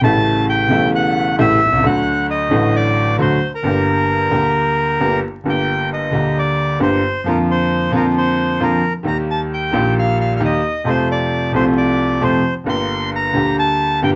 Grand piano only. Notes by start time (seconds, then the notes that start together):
0.01 A1 A2 C#3 G3 A3
0.05 E4
0.68 E1 E2 C#3 G3 A3 E4
1.39 A1 A2 C#3 G3 A3 E4
1.66 B1
1.72 C2
1.77 C#2
1.83 D2 D3 F#3 A3 F#4
2.49 A1 A2 D3 F#3 A3
2.53 F#4
3.19 D2 D3 F#3 A3 F#4
3.63 G1 G2 D3 G3 A#3 G4
4.30 D2 D3 G3 A#3 G4
5.00 G1 G2 D3 G3 A#3 G4
5.44 G1 G2 D3 G3 A#3
5.48 G4
6.11 D2 D3 G3 A#3
6.15 G4
6.79 G1 G2 D3 G3 A#3 G4
7.25 F2 D3 F3 A#3 F4
7.92 F2 D3 F3 A#3 F4
8.60 F2 D3 F3 A#3 F4
9.03 D#2 D#3 G3 A#3 G4
9.71 A#1 A#2 D#3 G3 A#3 G4
10.40 D#2 D#3 G3 A#3 G4
10.84 F2 C3 F3 A3 F4
11.52 C2 C3 F3 A3
11.56 F4
12.21 F2 C3 F3 A3 F4
12.64 G1 G2 D3 G3 A#3 G4
13.32 D2 D3 G3 A#3 G4
14.02 G1 G2 D3 G3 A#3 G4